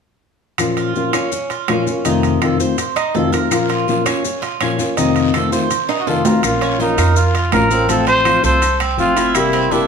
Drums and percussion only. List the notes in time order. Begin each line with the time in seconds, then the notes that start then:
0.58 high timbale, claves, maracas
0.77 high timbale, maracas
0.95 maracas
1.13 high timbale, claves, maracas
1.32 maracas
1.50 high timbale, maracas
1.68 high timbale, low timbale, claves, maracas
1.87 maracas
2.05 high timbale, maracas
2.23 high timbale, maracas
2.42 high timbale, claves, maracas
2.60 maracas
2.78 high timbale, maracas
2.96 high timbale, claves, maracas
3.15 low timbale, maracas
3.33 high timbale, maracas
3.51 high timbale, long guiro, claves, maracas
3.70 high timbale, maracas
3.88 short guiro, maracas
4.06 high timbale, short guiro, claves, maracas
4.25 long guiro, maracas
4.43 high timbale, maracas
4.61 high timbale, short guiro, claves, maracas
4.79 short guiro, maracas
4.97 high timbale, long guiro, maracas
5.16 high timbale, maracas
5.34 high timbale, short guiro, claves, maracas
5.52 short guiro, maracas
5.71 high timbale, long guiro, maracas
5.89 high timbale, claves, maracas
6.07 high timbale, short guiro, maracas
6.25 low timbale, short guiro, maracas
6.43 high timbale, long guiro, claves, maracas
6.61 high timbale, maracas
6.80 short guiro, maracas
6.98 high timbale, short guiro, claves, maracas
7.16 long guiro, maracas
7.35 high timbale, maracas
7.52 high timbale, low timbale, short guiro, claves, maracas
7.71 short guiro, maracas
7.89 high timbale, long guiro, maracas
8.07 high timbale, maracas
8.25 high timbale, short guiro, claves, maracas
8.44 short guiro, maracas
8.62 high timbale, long guiro, maracas
8.80 high timbale, claves, maracas
8.99 short guiro, maracas
9.16 high timbale, short guiro, maracas
9.35 high timbale, long guiro, claves, maracas
9.53 high timbale, maracas
9.72 short guiro, maracas